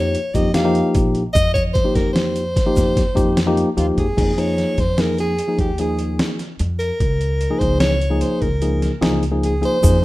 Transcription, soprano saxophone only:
Already playing: C#5
0.34 D#5
0.54 F5
1.33 D#5
1.54 C#5
1.73 C5
1.95 A#4
2.13 C5
3.77 F4
3.99 G#4
4.40 C#5
4.80 C5
5.00 A#4
5.20 G#4
5.60 G4
5.81 G#4
6.79 A#4
7.59 C5
7.80 C#5
8.21 C5
8.42 A#4
9.45 G#4
9.65 C5

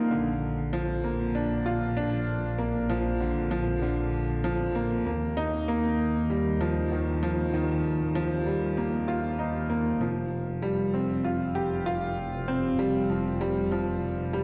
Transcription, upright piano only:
Already playing: F3 G3 A#3 D#4 F4
0.11 D3
0.73 F3
1.04 A#3
1.35 D4
1.66 F4
1.97 D4
2.58 A#3
2.89 F3
3.20 D3
3.51 F3
3.82 D3
4.44 F3
4.75 A#3
5.06 A#3
5.37 D#4
5.68 A#3
6.30 G3
6.61 F3
6.92 D#3
7.23 F3
7.54 D#3
8.15 F3
8.46 G3
8.77 A#3
9.08 F4
9.39 D#4
9.70 A#3
10.01 F3
10.62 G3
10.94 C4
11.24 F4
11.55 G4
11.86 F4
12.48 C4
12.79 G3
13.10 F3
13.41 G3
13.72 F3
14.33 G3

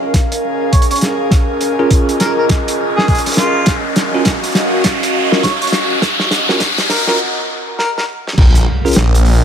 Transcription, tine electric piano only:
1.79 C#4 F4 G#4 A#4
4.14 C#4 F4 F#4 A#4
5.32 C#4 F4 F#4 A#4
6.49 C#4 F4 F#4 A#4
7.08 C#4 F4 F#4 A#4
8.85 C#4 F4 G#4 A#4

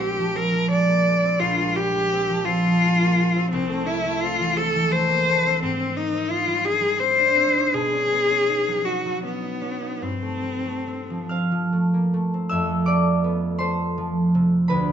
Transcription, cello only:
0.00 G4
0.36 A#4
0.71 D5
1.40 F4
1.76 G4
2.45 F4
3.51 C4
3.86 E4
4.21 F4
4.57 A4
4.92 C5
5.63 C4
5.97 D#4
6.30 F4
6.64 G#4
7.00 C5
7.74 G#4
8.85 F#4
9.24 B3
10.03 C4

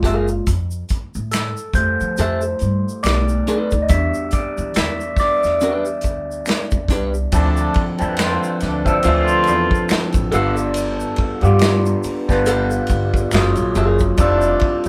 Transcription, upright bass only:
0.03 F#1
0.47 F2
1.15 A2
1.74 F2
2.01 F3
2.18 F2
2.61 G2
3.04 B1
3.73 D2
3.90 E2
4.34 muted upright bass stroke
4.58 E3
4.76 E2
5.44 E2
6.05 D2
6.72 F2
6.89 C2
7.33 D2
8.01 F2
8.62 D2
8.86 D3
9.05 D2
9.48 E2
9.90 muted upright bass stroke
10.15 A1
10.33 G1
11.19 muted upright bass stroke
11.43 G2
12.05 muted upright bass stroke
12.29 G1
12.90 G1
13.33 F#1
13.58 A#1
13.76 F#1
14.19 F1

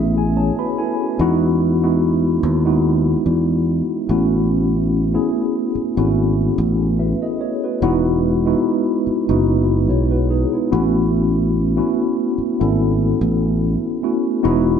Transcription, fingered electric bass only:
Already playing: A1
1.19 E2
2.43 D#2
3.26 E2
4.09 A1
5.75 muted fingered electric bass stroke
5.97 G#1
6.58 A1
7.82 E1
9.07 muted fingered electric bass stroke
9.29 F#1
9.90 B1
10.73 A1
12.38 muted fingered electric bass stroke
12.61 G#1
13.21 A1
14.45 E1

